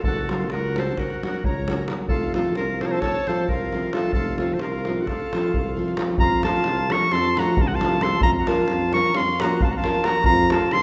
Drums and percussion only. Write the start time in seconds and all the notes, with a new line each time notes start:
0.04 davul low
0.16 davul high
0.29 davul high
0.50 davul high
0.76 davul high
0.88 davul high
0.97 davul high, davul low
1.10 davul high
1.23 davul high
1.34 davul high
1.44 davul low
1.68 davul high
1.78 davul high
1.88 davul high
1.99 davul high
2.08 davul low
2.21 davul high
2.34 davul high
2.55 davul high
2.81 davul high
2.91 davul high
3.02 davul high, davul low
3.15 davul high
3.27 davul high
3.38 davul high
3.48 davul low
3.73 davul high
3.83 davul high
3.93 davul high
4.02 davul high
4.13 davul low
4.38 davul high
4.48 davul high
4.59 davul high
4.72 davul high
4.85 davul high
5.07 davul high, davul low
5.21 davul high
5.33 davul high
5.43 davul high
5.54 davul low
5.66 davul high
5.88 davul high
5.97 davul high
6.08 davul high
6.18 davul low
6.43 davul high
6.55 davul high
6.64 davul high
6.77 davul high
6.90 davul high
7.12 davul high
7.24 davul high
7.37 davul high
7.57 davul low
7.69 davul high
7.81 davul high
7.92 davul high
8.01 davul high
8.11 davul high
8.21 davul low
8.47 davul high
8.58 davul high
8.68 davul high
8.80 davul high
8.93 davul high
9.14 davul high
9.27 davul high
9.40 davul high
9.60 davul low
9.73 davul high
9.84 davul high
9.95 davul high
10.04 davul high
10.14 davul high
10.24 davul low
10.50 davul high
10.71 davul high